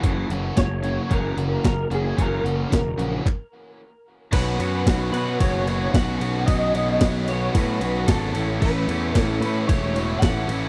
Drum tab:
CC |----------------|----------------|x---------------|----------------|
RD |----------------|----------------|x-x-x-x-x-x-x-x-|x-x-x-x-x-x-x-x-|
HH |x-x-x-x-x-x-x-x-|x-x-x-x---------|----------------|----------------|
CP |----------------|--------x-------|----------------|----------------|
SD |----o-------o---|----o-----------|----o-------o--o|----o-------o---|
BD |o---o---o---o---|o---o---o-------|o---o---o---o---|o---o---o---o---|

CC |x---------------|
RD |--x-x-x-x-x-x-x-|
HH |----------------|
CP |----------------|
SD |----o-------o---|
BD |o---o---o---o---|